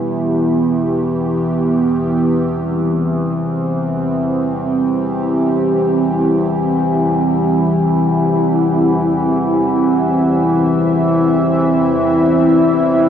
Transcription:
Already playing: synth drone E2 E3, analog synth pad B3 E4 G4 E5
2.42 analog synth pad C4
3.55 analog synth pad G4
3.59 analog synth pad E4
8.57 analog synth pad E5
12.73 analog synth pad A4

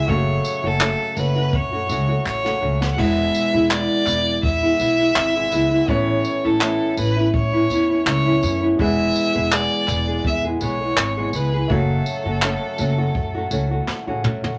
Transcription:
Already playing: violin E5
0.06 upright bass F#1, nylon-string guitar F#2 C#3 F#3 A3 C#4 F#4, upright piano A3 F#4 C#5, violin C#5, kick
0.45 tambourine
0.63 upright bass F#1, nylon-string guitar F#3 A3 C#4 F#4, violin A4
0.80 nylon-string guitar F#2 C#3 F#3 A3 C#4 F#4, clap
1.16 upright bass F#1, nylon-string guitar F#3 A3 C#4 F#4, violin B4, tambourine
1.36 nylon-string guitar F#3 A3 C#4 F#4
1.53 upright bass F#2, violin C#5, kick
1.72 nylon-string guitar F#3 A3 C#4 F#4
1.88 upright bass C#2, nylon-string guitar F#3 A3 C#4 F#4, tambourine
2.09 nylon-string guitar F#3 A3 C#4 F#4
2.26 upright bass A1, violin C#5, clap
2.44 nylon-string guitar F#2 C#3 F#3 A3 C#4 F#4, snare
2.61 upright bass C#2, nylon-string guitar F#3 A3 C#4 F#4
2.80 nylon-string guitar F#3 A3 C#4 F#4, snare
2.93 upright piano G#3, violin F#5
2.97 upright bass E1, nylon-string guitar E2 B2 E3 G#3 B3 E4, upright piano E4 B4, violin E5, kick, crash
3.34 tambourine
3.54 upright bass E1, nylon-string guitar E3 G#3 B3 E4
3.70 nylon-string guitar E2 B2 E3 G#3 B3 E4, violin D5, clap
4.06 upright bass E1, nylon-string guitar E3 G#3 B3 E4, clap, tambourine
4.43 upright bass E2, violin E5, kick
4.62 nylon-string guitar E3 G#3 B3 E4
4.79 upright bass B1, nylon-string guitar E3 G#3 B3 E4, tambourine
4.99 nylon-string guitar E3 G#3 B3 E4
5.16 upright bass G#1, clap
5.35 nylon-string guitar E2 B2 E3 G#3 B3 E4
5.51 upright bass C#2, nylon-string guitar E3 G#3 B3 E4, tambourine
5.71 nylon-string guitar E3 G#3 B3 E4
5.86 upright bass A1, nylon-string guitar A2 E3 B3 C#4, upright piano A3 C#4 B4, violin C#5, kick
5.90 nylon-string guitar E4
6.25 tambourine
6.44 upright bass A1, nylon-string guitar B3 C#4 E4, violin A4
6.61 nylon-string guitar A2 E3 B3, clap
6.62 nylon-string guitar C#4 E4, clap
6.97 upright bass A1, nylon-string guitar E3 B3 C#4 E4, violin B4, tambourine
7.17 nylon-string guitar B3 C#4 E4
7.34 upright bass A2, violin C#5, kick
7.53 nylon-string guitar B3 C#4 E4
7.70 upright bass E2, nylon-string guitar E3 B3 C#4 E4, tambourine
7.89 nylon-string guitar B3 C#4 E4
8.06 upright bass C#2, upright piano A3 C#4 B4, violin C#5, clap
8.26 nylon-string guitar A2 E3 B3 C#4 E4
8.42 upright bass F#2, nylon-string guitar E3 B3 C#4 E4, tambourine
8.62 nylon-string guitar B3 C#4 E4
8.77 upright bass E1, nylon-string guitar E2 B2 E3 G#3 B3, upright piano G#3 E4, kick
8.81 nylon-string guitar G#4, upright piano B4, violin E5
9.16 tambourine
9.35 upright bass E1, nylon-string guitar E3 G#3 B3 G#4
9.51 nylon-string guitar E2 B2 E3 G#3 B3 G#4, violin D5, clap
9.88 upright bass E1, nylon-string guitar E3 G#3 B3 G#4, clap, tambourine
10.08 nylon-string guitar E3 G#3 B3 G#4
10.25 upright bass E2, violin E5, kick
10.44 nylon-string guitar E3 G#3 B3 G#4
10.60 upright bass B1, nylon-string guitar E3 G#3 B3 G#4, violin C#5, tambourine
10.80 nylon-string guitar E3 G#3 B3 G#4
10.97 upright bass G#1, clap
11.17 nylon-string guitar E2 B2 E3 G#3 B3 G#4
11.28 violin C#5
11.33 upright bass C#2, nylon-string guitar E3 G#3 B3 G#4, violin B4, tambourine
11.53 nylon-string guitar E3 G#3 B3 G#4
11.68 upright bass F#1, nylon-string guitar F#2 C#3 F#3 A3 C#4 F#4, upright piano A3 F#4 C#5, violin A4, kick
12.06 tambourine
12.25 upright bass F#1, nylon-string guitar F#3 A3 C#4 F#4
12.42 nylon-string guitar F#2 C#3 F#3 A3, clap
12.44 nylon-string guitar C#4 F#4, clap
12.78 upright bass F#1, nylon-string guitar F#3 A3 C#4 F#4, tambourine
12.98 nylon-string guitar F#3 A3 C#4 F#4
13.15 upright bass F#2, kick
13.35 nylon-string guitar F#3 A3 C#4 F#4
13.51 upright bass C#2, nylon-string guitar F#3 A3 C#4 F#4, tambourine
13.71 nylon-string guitar F#3 A3 C#4 F#4
13.88 muted upright bass stroke, snare, clap
14.07 upright bass A1, nylon-string guitar F#2 C#3 F#3 A3 C#4 F#4
14.23 upright bass F#2, nylon-string guitar F#3 A3 C#4 F#4, mid tom
14.43 nylon-string guitar F#3 A3 C#4 F#4, floor tom

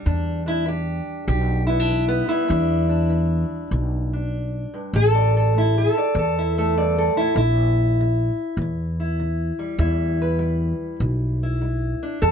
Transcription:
Already playing: steel-string acoustic guitar G3
0.06 steel-string acoustic guitar E2 D4, upright bass E2
0.46 steel-string acoustic guitar D4 E4
0.66 steel-string acoustic guitar E3 G4
1.27 upright bass B1, steel-string acoustic guitar B2 G4
1.67 steel-string acoustic guitar B3 E4
1.80 steel-string acoustic guitar D4
1.89 steel-string acoustic guitar E3
2.08 steel-string acoustic guitar B3
2.28 steel-string acoustic guitar G3 E4
2.48 steel-string acoustic guitar E2 D4, upright bass E2
2.89 steel-string acoustic guitar D4
3.10 steel-string acoustic guitar E3
3.71 upright bass B1, steel-string acoustic guitar B2
4.13 steel-string acoustic guitar D4
4.74 steel-string acoustic guitar G2
4.93 upright bass A1, steel-string acoustic guitar A2 A4
5.15 steel-string acoustic guitar D5
5.37 steel-string acoustic guitar A4
5.55 steel-string acoustic guitar A3 E4
5.78 steel-string acoustic guitar A4
5.98 steel-string acoustic guitar D5
6.15 upright bass E2, steel-string acoustic guitar E2 A4
6.39 steel-string acoustic guitar E4
6.58 steel-string acoustic guitar A3 A4
6.77 steel-string acoustic guitar G2 D5
6.98 steel-string acoustic guitar A4
7.17 steel-string acoustic guitar A2 E4
7.36 upright bass A#1, steel-string acoustic guitar A#2 E4
8.01 steel-string acoustic guitar C#3
8.57 upright bass E2
8.62 steel-string acoustic guitar A#2
9.00 steel-string acoustic guitar E4
9.19 steel-string acoustic guitar C#3
9.59 steel-string acoustic guitar G3
9.79 upright bass E2, steel-string acoustic guitar E2 E4
10.22 steel-string acoustic guitar B4
10.39 steel-string acoustic guitar G3
11.00 upright bass B1, steel-string acoustic guitar E2
11.43 steel-string acoustic guitar E4
11.62 steel-string acoustic guitar G3
12.03 steel-string acoustic guitar D4
12.22 upright bass E2, steel-string acoustic guitar E2 A4

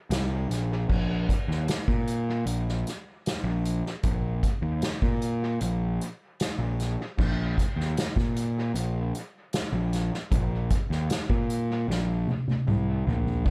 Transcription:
0.10 picked electric bass C2, snare, closed hi-hat
0.49 picked electric bass A#1, snare, closed hi-hat
0.89 picked electric bass A#1, kick, crash
1.29 kick, closed hi-hat
1.48 picked electric bass D#2, snare
1.68 snare, closed hi-hat
1.88 picked electric bass A#2, kick
2.07 closed hi-hat
2.46 picked electric bass A#1, closed hi-hat
2.68 snare
2.87 snare, closed hi-hat
3.26 snare, closed hi-hat
3.44 picked electric bass A#1
3.65 closed hi-hat
3.86 snare
4.03 picked electric bass A#1, kick, closed hi-hat
4.43 kick, closed hi-hat
4.62 picked electric bass D#2
4.82 snare, closed hi-hat
5.02 picked electric bass A#2, kick
5.22 closed hi-hat
5.61 picked electric bass A#1, closed hi-hat
6.01 closed hi-hat
6.40 snare, closed hi-hat
6.59 picked electric bass A#1
6.80 snare, closed hi-hat
7.18 picked electric bass A#1, kick, crash
7.58 kick, closed hi-hat
7.76 picked electric bass D#2, snare
7.97 snare, closed hi-hat
8.16 picked electric bass A#2, kick, snare
8.36 closed hi-hat
8.74 picked electric bass A#1, closed hi-hat
9.15 closed hi-hat
9.53 snare, closed hi-hat
9.73 picked electric bass A#1
9.93 snare, closed hi-hat
10.14 snare
10.31 picked electric bass A#1, kick, closed hi-hat
10.70 kick, closed hi-hat
10.90 picked electric bass D#2, snare
11.10 snare, closed hi-hat
11.30 picked electric bass A#2, kick
11.50 closed hi-hat
11.88 picked electric bass A#1, snare
12.27 high tom
12.48 high tom
12.67 picked electric bass C2, mid tom
13.07 picked electric bass A#1, floor tom
13.26 floor tom
13.45 picked electric bass A#1, kick, crash

